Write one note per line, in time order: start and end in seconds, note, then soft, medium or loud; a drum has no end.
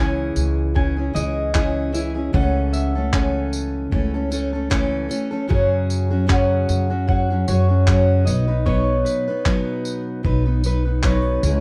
0.00 0.33 C#2 loud
0.00 0.75 C#3 medium
0.00 0.74 E3 medium
0.00 0.75 C#4 medium
0.00 0.76 E4 medium
0.00 0.76 G#4 medium
0.00 0.75 G#5 loud
0.36 1.12 C#2 medium
0.36 tambourine medium
0.74 0.97 E3 medium
0.74 0.98 C#4 medium
0.74 0.97 E4 medium
0.74 0.95 G#4 medium
0.74 2.25 G#5 loud
0.74 kick loud
0.97 1.14 C#4 soft
0.97 1.15 E4 soft
0.97 1.15 G#4 medium
1.14 2.30 C#2 loud
1.14 1.53 E3 medium
1.14 1.53 C#4 medium
1.14 1.54 E4 medium
1.14 1.54 G#4 medium
1.14 1.99 D#5 medium
1.14 tambourine medium
1.54 1.94 C#3 medium
1.54 1.91 E3 medium
1.54 1.93 C#4 medium
1.54 1.94 E4 medium
1.54 1.94 G#4 medium
1.54 kick loud
1.54 clap loud
1.93 2.16 E3 medium
1.93 2.16 C#4 medium
1.93 2.14 E4 medium
1.93 2.13 G#4 medium
1.93 2.72 E5 medium
1.93 tambourine medium
2.14 2.33 C#4 soft
2.14 2.34 E4 medium
2.14 2.33 G#4 medium
2.33 3.88 C#2 loud
2.33 2.95 C#3 medium
2.33 2.95 E3 medium
2.33 2.95 A3 medium
2.33 2.95 C#4 medium
2.33 2.94 A4 medium
2.33 3.95 F#5 loud
2.33 kick loud
2.73 4.45 E5 medium
2.73 tambourine medium
2.95 3.12 A3 soft
2.95 3.12 C#4 soft
2.95 3.13 A4 medium
3.12 3.92 C#3 medium
3.12 3.90 E3 medium
3.12 3.91 A3 medium
3.12 3.93 C#4 medium
3.12 3.92 A4 medium
3.12 kick loud
3.12 clap loud
3.53 tambourine medium
3.91 5.07 C#2 loud
3.91 4.14 E3 medium
3.91 4.14 A3 medium
3.91 4.14 C#4 medium
3.91 4.13 A4 medium
3.91 kick loud
4.14 4.30 A3 soft
4.14 4.31 C#4 medium
4.14 4.31 A4 medium
4.30 4.53 E3 medium
4.30 4.53 A3 medium
4.30 4.54 C#4 medium
4.30 4.52 A4 medium
4.30 tambourine medium
4.53 4.69 A3 soft
4.53 4.69 C#4 medium
4.53 4.70 A4 medium
4.70 5.10 C#3 medium
4.70 5.07 E3 loud
4.70 5.08 A3 medium
4.70 5.09 C#4 loud
4.70 5.10 A4 loud
4.70 kick loud
4.70 clap loud
5.09 5.32 E3 medium
5.09 5.32 A3 medium
5.09 5.31 C#4 medium
5.09 5.30 A4 medium
5.09 tambourine medium
5.31 5.49 A3 medium
5.31 5.48 C#4 medium
5.31 5.49 A4 medium
5.48 6.10 F#2 medium
5.48 6.65 F#2 loud
5.48 6.11 C#3 medium
5.48 6.11 F#3 medium
5.48 6.11 C#4 medium
5.48 6.10 F#4 medium
5.48 6.09 G#4 loud
5.48 kick loud
5.90 tambourine medium
6.10 6.27 F#3 soft
6.10 6.27 C#4 soft
6.10 6.27 F#4 medium
6.10 6.27 G#4 medium
6.27 6.89 F#2 medium
6.27 6.90 C#3 medium
6.27 6.90 F#3 medium
6.27 6.90 C#4 medium
6.27 6.89 F#4 loud
6.27 6.89 G#4 medium
6.27 kick loud
6.27 clap loud
6.31 7.07 F#5 loud
6.69 7.44 F#2 medium
6.69 tambourine medium
6.90 7.06 F#3 soft
6.90 7.07 C#4 soft
6.90 7.08 F#4 soft
6.90 7.08 G#4 medium
7.07 7.30 F#3 medium
7.07 7.30 C#4 medium
7.07 7.30 F#4 medium
7.07 7.29 G#4 medium
7.07 8.68 F#5 loud
7.07 kick loud
7.30 7.46 F#3 soft
7.30 7.48 C#4 soft
7.30 7.48 F#4 soft
7.30 7.48 G#4 medium
7.47 8.23 F#2 loud
7.47 7.69 F#3 medium
7.47 7.69 C#4 medium
7.47 7.68 F#4 medium
7.47 7.67 G#4 medium
7.47 8.65 C#5 medium
7.47 tambourine medium
7.68 7.87 F#3 soft
7.68 7.87 C#4 soft
7.68 7.87 F#4 soft
7.68 7.87 G#4 medium
7.87 8.27 F#2 medium
7.87 8.27 C#3 medium
7.87 8.25 F#3 medium
7.87 8.27 C#4 medium
7.87 8.28 F#4 medium
7.87 8.27 G#4 medium
7.87 kick loud
7.87 clap loud
8.25 9.02 B1 loud
8.25 8.48 F#3 medium
8.25 8.49 B3 medium
8.25 8.47 D#4 medium
8.25 8.46 B4 medium
8.25 10.03 D#5 medium
8.25 tambourine medium
8.48 8.65 B3 soft
8.48 8.66 D#4 medium
8.48 8.66 B4 medium
8.66 9.27 B2 medium
8.66 9.27 F#3 medium
8.66 9.28 B3 medium
8.66 9.28 D#4 medium
8.66 9.26 B4 medium
8.66 10.57 C#5 loud
8.66 kick loud
9.05 10.65 B4 medium
9.05 tambourine medium
9.28 9.45 B3 soft
9.28 9.45 D#4 medium
9.28 9.45 B4 medium
9.45 10.24 B2 medium
9.45 10.22 F#3 medium
9.45 10.23 B3 medium
9.45 10.24 D#4 medium
9.45 10.24 B4 medium
9.45 kick loud
9.45 clap loud
9.85 tambourine medium
10.23 11.39 B1 loud
10.23 10.45 F#3 medium
10.23 10.46 B3 medium
10.23 10.46 D#4 medium
10.23 10.44 B4 medium
10.23 kick loud
10.45 10.63 B3 soft
10.45 10.64 D#4 soft
10.45 10.64 B4 medium
10.64 10.86 F#3 medium
10.64 10.86 B3 medium
10.64 10.85 D#4 medium
10.64 11.60 B4 medium
10.64 10.84 B4 medium
10.64 tambourine medium
10.85 11.03 B3 soft
10.85 11.03 D#4 soft
10.85 11.03 B4 soft
11.03 11.43 B2 medium
11.03 11.43 F#3 medium
11.03 11.43 B3 medium
11.03 11.43 D#4 medium
11.03 11.43 B4 medium
11.03 11.60 C#5 medium
11.03 kick loud
11.03 clap loud
11.43 11.60 C#2 loud
11.43 11.60 E3 medium
11.43 11.60 C#4 medium
11.43 11.60 E4 medium
11.43 11.60 G#4 medium
11.43 tambourine medium